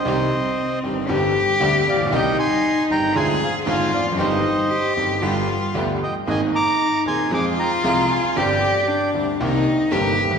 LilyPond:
<<
  \new Staff \with { instrumentName = "Bandoneon" } { \time 4/4 \key c \minor \tempo 4 = 116 <c'' ees''>4. r2 <d'' f''>8 | <ees'' g''>8 <aes'' c'''>4 <g'' bes''>8 <aes'' c'''>8 <f'' aes''>8 <f'' aes''>8 <d'' f''>8 | <c'' ees''>4. r2 <ees'' g''>8 | <ees'' aes''>8 <bes'' d'''>4 <aes'' c'''>8 <aes'' d'''>8 <g'' bes''>8 <f'' bes''>8 <f'' aes''>8 |
<d'' g''>4. r2 r8 | }
  \new Staff \with { instrumentName = "Cello" } { \time 4/4 \key c \minor c'2 g'2 | ees'2 aes'4 f'4 | ees'4 g'4 f'4. r8 | ees'2 f'2 |
g'4 d'4 ees'4 g'4 | }
  \new Staff \with { instrumentName = "String section" } { \time 4/4 \key c \minor <c' ees' g'>8 r4 <c' ees' g'>8 <c' d' g'>8 r8 <c' d' g'>8 r8 | <c' ees' g'>8 r4 <c' ees' g'>8 <c' d' f'>8 r8 <c' d' f'>8 r8 | <g c' ees' g'>8 r4 <g c' ees' g'>8 <b d' g'>8 r8 <b d' g'>8 r8 | <bes c' aes'>8 r4 <bes c' aes'>8 <c' f' aes'>8 r8 <c' f' aes'>8 r8 |
<c' d' g'>8 r4 <c' d' g'>8 <c' ees' bes'>8 r8 <c' ees' bes'>8 r8 | }
  \new Staff \with { instrumentName = "Grand piano" } { \clef bass \time 4/4 \key c \minor <c, c ees g c' g'>8 r4 <g,, g, ees g c' g'>8 <g,, g, d g c' g'>8 r8 <d, d g c' g'>8 r32 a,,32 bes,,32 b,,32 | <c, c ees g c' g'>8 r4 <g,, g, ees g c' g'>8 <d, d aes c' f'>8 r8 <aes,, aes, d aes c' f'>8 r32 e,32 f,32 fis,32 | <g,, g, ees g c' g'>8 r4 <g,, g, ees g c' g'>8 <g,, g, d g b g'>8 r8 <d, d g b g'>8 r8 | <aes,, aes, ees bes c' aes'>8 r4 <ees,, ees, ees bes c' aes'>8 <f, f aes c' aes'>8 r8 <c, c f aes c' aes'>8 r8 |
<g,, g, d g c' g'>8 r4 <d, d g c' g'>8 <c, c ees bes c' g'>8 r8 <g,, g, ees bes c' g'>8 r32 d,32 ees,32 r32 | }
>>